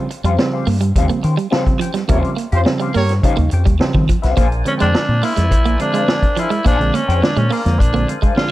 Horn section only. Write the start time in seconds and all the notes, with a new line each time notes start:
2.10 G4 A#4 C#5
2.52 F4 G4 C5
2.95 G4 A#4 C#5